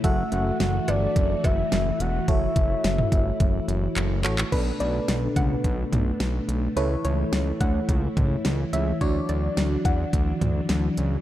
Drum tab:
CC |----------------|----------------|x---------------|----------------|
HH |x-x-x-x-x-x-x-x-|x-x-x-x-x-x-x-x-|x-x-x-x-x-x-x-x-|x-x-x-x-x-x-x-x-|
CB |------x---x-----|----------------|----------------|----------------|
CP |----------------|------------x-xx|----------------|----------------|
SD |----o-------o---|----o-----------|----o-------o---|----o-------o---|
T2 |----------------|-----o----------|----------o-----|----------o-----|
BD |o-------o-o-----|o-o---o-o-------|o-----o-o-------|------o-o-o-----|

CC |----------------|
HH |x-x-x-x-x-x-x-x-|
CB |----------------|
CP |----------------|
SD |----o-------o---|
T2 |----------o-----|
BD |o-----o-o-------|